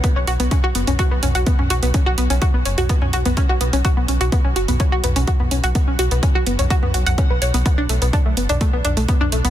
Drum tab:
HH |x-xxx-xxx-xxx-xx|x-xxx-xxx-xxx-xx|x-xxx-xxx-xxx-xx|x-xxx-xxx-xxx-xx|
T2 |-------o--o--o--|-------o-o-o----|-------o--o--o--|-------o-o-o----|
BD |o---o---o---o---|o---o---o---o---|o---o---o---o---|o---o---o---o---|

HH |x-xxx-xxx-xxx-xx|
T2 |-------o--o--o--|
BD |o---o---o---o---|